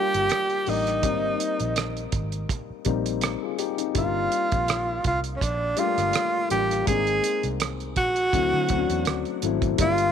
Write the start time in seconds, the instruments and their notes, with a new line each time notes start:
Already playing: grand piano G3 A#3 D4 F4, tenor saxophone G4
0.14 fingered electric bass G1, closed hi-hat
0.29 cross-stick, closed hi-hat
0.50 closed hi-hat
0.66 fingered electric bass A1, grand piano G3 A#3 D4 G4, tenor saxophone D#4, open hi-hat
0.87 cross-stick, closed hi-hat
1.02 fingered electric bass G#1, grand piano G3 A#3 C4 D#4, kick, closed hi-hat
1.40 closed hi-hat
1.60 fingered electric bass A#1, closed hi-hat
1.76 cross-stick, closed hi-hat
1.97 closed hi-hat
2.12 fingered electric bass G#1, kick, closed hi-hat
2.32 closed hi-hat
2.49 kick, closed hi-hat
2.70 muted fingered electric bass stroke
2.85 fingered electric bass A#1, grand piano G3 A#3 C4 D#4, kick, closed hi-hat
3.06 closed hi-hat
3.21 cross-stick, closed hi-hat
3.42 grand piano F4 G#4
3.58 grand piano D#4 G4, closed hi-hat
3.78 grand piano C4 D#4, closed hi-hat
3.94 fingered electric bass G1, grand piano G3 A#3 D4 F4, kick, closed hi-hat
3.98 tenor saxophone F4
4.32 closed hi-hat
4.52 fingered electric bass A#1, kick, closed hi-hat
4.68 cross-stick, closed hi-hat
5.04 fingered electric bass C2, tenor saxophone F4, kick, closed hi-hat
5.24 closed hi-hat
5.36 tenor saxophone C#4
5.41 fingered electric bass A#1, tenor saxophone D4, kick, closed hi-hat
5.76 grand piano G3 A3 D4 G4, tenor saxophone F4, closed hi-hat
5.84 grand piano A#3
5.98 fingered electric bass G1, cross-stick, closed hi-hat
6.13 cross-stick, closed hi-hat
6.50 fingered electric bass A1, grand piano G3 A#3 D4 F4, tenor saxophone G4, closed hi-hat
6.71 cross-stick, closed hi-hat
6.86 fingered electric bass G#1, grand piano G#3 A#3 C4 D4, tenor saxophone G#4, kick, closed hi-hat
6.95 grand piano D#4
7.07 closed hi-hat
7.24 closed hi-hat
7.43 fingered electric bass C2, closed hi-hat
7.60 cross-stick, closed hi-hat
7.80 closed hi-hat
7.96 fingered electric bass A#1, tenor saxophone F#4, kick, closed hi-hat
8.16 closed hi-hat
8.33 fingered electric bass D2, grand piano F#3 A3 C4 E4, kick, closed hi-hat
8.53 fingered electric bass D3
8.69 fingered electric bass D2, grand piano F#3 A3 C4 C#4, kick, closed hi-hat
8.78 grand piano D4
8.90 fingered electric bass E2, closed hi-hat
9.05 fingered electric bass D2, cross-stick, closed hi-hat
9.25 closed hi-hat
9.42 fingered electric bass G#1, grand piano F#3 A3 C4 E4, closed hi-hat
9.62 kick, closed hi-hat
9.78 fingered electric bass G1, grand piano G3 A#3 D4 F4, tenor saxophone F4, kick, closed hi-hat
9.98 closed hi-hat